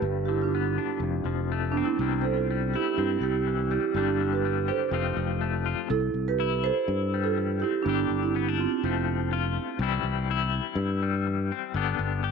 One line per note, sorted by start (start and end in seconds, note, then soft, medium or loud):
0.00 0.77 G1 medium
0.00 0.99 G2 medium
0.00 0.52 G3 soft
0.00 0.24 G4 medium
0.00 0.22 B4 medium
0.25 1.02 D3 medium
0.25 0.40 E4 medium
0.25 0.40 G4 medium
0.42 1.71 D4 medium
0.42 1.71 F4 medium
0.55 1.00 B3 medium
0.78 0.99 D4 soft
1.00 1.19 F1 medium
1.00 1.98 F2 medium
1.25 1.81 F1 medium
1.25 1.97 F3 medium
1.52 1.97 A3 medium
1.72 1.87 B3 medium
1.72 1.87 D4 medium
1.77 1.98 C4 medium
1.85 2.21 C4 medium
1.85 2.20 E4 medium
1.99 2.74 C2 medium
1.99 2.24 C3 medium
1.99 2.25 E3 medium
1.99 2.49 G3 medium
1.99 2.97 C4 medium
2.22 2.30 A4 medium
2.22 2.28 C5 medium
2.34 2.70 F4 medium
2.34 2.69 A4 medium
2.51 3.22 G3 medium
2.74 3.97 E4 medium
2.74 2.95 E4 medium
2.74 2.96 G4 medium
2.96 3.16 G2 medium
2.96 3.93 C4 medium
2.96 3.21 C4 medium
2.96 3.20 E4 medium
3.20 3.77 C2 medium
3.20 3.70 G3 soft
3.20 3.68 E4 medium
3.20 3.70 G4 medium
3.47 3.93 E3 medium
3.71 3.95 G3 soft
3.71 3.95 E4 medium
3.71 3.95 G4 medium
3.94 4.69 G1 medium
3.94 4.90 G2 medium
3.94 4.19 D3 medium
3.94 4.44 G3 medium
3.94 4.91 D4 medium
3.94 4.31 G4 medium
3.98 4.32 D4 medium
4.21 4.92 D3 medium
4.33 4.67 G4 medium
4.33 4.66 B4 medium
4.45 4.93 G3 medium
4.68 4.90 G4 soft
4.68 5.63 A4 medium
4.68 5.62 C5 medium
4.91 5.11 F1 medium
4.91 5.87 F2 medium
4.91 5.15 F3 medium
4.91 5.40 A3 soft
4.91 5.88 C4 medium
4.91 5.64 F4 medium
5.17 5.73 F1 medium
5.17 5.87 F3 soft
5.41 5.87 A3 medium
5.66 5.88 F4 medium
5.89 6.09 C2 loud
5.89 6.34 C3 medium
5.89 6.26 E4 medium
5.89 6.25 A4 loud
6.14 6.70 C2 medium
6.28 6.62 G4 medium
6.28 6.61 B4 medium
6.39 6.84 E3 medium
6.39 7.86 E4 medium
6.64 7.23 A4 medium
6.64 7.22 C5 loud
6.88 7.62 G2 loud
6.88 7.33 G2 medium
7.14 7.86 G3 medium
7.24 7.59 F4 medium
7.24 7.61 A4 medium
7.38 7.81 E3 medium
7.60 7.84 C4 soft
7.60 7.84 E4 medium
7.60 7.85 G4 medium
7.82 8.04 G1 loud
7.82 8.30 G2 medium
7.82 8.20 B3 medium
7.82 8.19 D4 medium
7.87 8.34 D3 medium
7.87 8.35 D4 medium
7.87 8.82 G4 medium
8.10 8.65 G1 medium
8.23 8.57 C4 medium
8.23 8.59 E4 medium
8.35 8.79 D3 medium
8.35 8.48 B3 medium
8.48 8.83 D4 soft
8.58 9.05 C4 medium
8.58 9.03 F4 medium
8.83 9.57 F1 medium
8.83 9.27 F2 medium
8.83 9.31 F3 medium
8.83 9.78 A3 medium
8.83 9.78 C4 medium
9.32 9.75 F3 medium
9.32 9.78 F4 medium
9.79 9.98 C2 loud
9.79 10.24 C3 medium
9.79 10.29 E3 medium
9.79 11.01 G3 medium
9.79 11.51 C4 medium
9.83 10.30 E4 medium
10.03 10.59 C2 medium
10.30 10.73 E3 medium
10.30 11.75 E4 medium
10.75 11.50 G2 medium
10.75 11.22 G2 medium
11.03 11.75 G3 medium
11.27 11.70 E3 medium
11.52 11.72 C4 medium
11.74 11.93 G1 loud
11.74 12.18 G2 medium
11.74 12.22 D3 medium
11.74 12.31 B3 medium
11.74 12.31 D4 medium
11.74 12.23 G4 soft
11.99 12.31 G1 medium
12.23 12.31 D3 medium
12.23 12.31 G4 medium